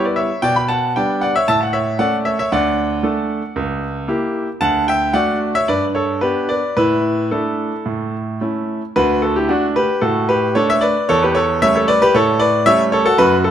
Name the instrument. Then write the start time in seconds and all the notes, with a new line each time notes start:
grand piano
Already playing: G3 B3 E4
0.05 B4 D5
0.16 C#5 E5
0.42 B2 D5 G5
0.56 G5 B5
0.68 F#5 A5
0.96 G3 B3 D4 D5 G5
1.21 D5 F#5
1.36 C#5 E5
1.48 A2 E5 A5
1.61 F#5 A5
1.73 C#5 E5
1.99 A3 C#4 A4 D5 F#5
2.25 C#5 E5
2.39 C#5 E5
2.52 D2 D5 F#5
3.03 A3 D4 A4
3.56 C#2
4.08 A#3 E4 G4
4.61 D2 F#5 A5
4.88 E5 G5
5.13 A3 D4 F#4 D5 F#5
5.55 C#5 E5
5.68 G2 B4 D5
5.95 A4 C#5
6.21 B3 D4 G4 B4
6.49 B4 D5
6.77 A2 E4 B4
7.31 A3 D4 E4 A4
7.86 A2
8.41 A3 C#4 E4
8.96 D2 F#4 B4
9.22 F#4 A4
9.36 E4 G4
9.49 A3 D4 F#4
9.76 G4 B4
10.01 A2 F#4 A4
10.29 G4 B4
10.55 A3 D4 A4 C#5
10.70 C#5 E5
10.81 B4 D5
11.09 E2 A4 C#5
11.23 G4 B4
11.35 A4 C#5
11.62 G3 A3 C#4 C#5 E5
11.76 A4 C#5
11.88 B4 D5
12.02 G4 B4
12.14 A2 A4 C#5
12.39 B4 D5
12.66 G3 A3 C#4 C#5 E5
12.92 A4 C#5
13.06 F#4 A4
13.18 F#2 F#4 B4
13.44 F#4 A4